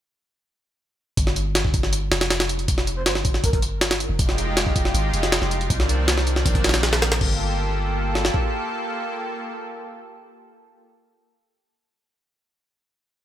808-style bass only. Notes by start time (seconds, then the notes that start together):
1.17 G1
2.11 F1
3.06 G1
4.09 F1
4.94 G#1
5.13 F1
5.42 F1
5.70 C2
6.46 A#1
7.21 G1